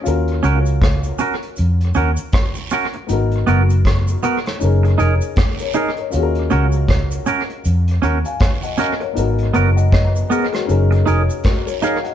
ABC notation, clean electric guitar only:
X:1
M:4/4
L:1/8
Q:"Swing 16ths" 1/4=79
K:Ebm
V:1 name="Clean electric guitar"
z [DGB] z [DGB] z [DGB] z [DGB] | z [CGB] z [CGB] z [EAB] z [EAB] | z [DGB] z [DGB] z [DGB] z [DGB] | z [CGB] z [CGB] z [EAB] z [EAB] |]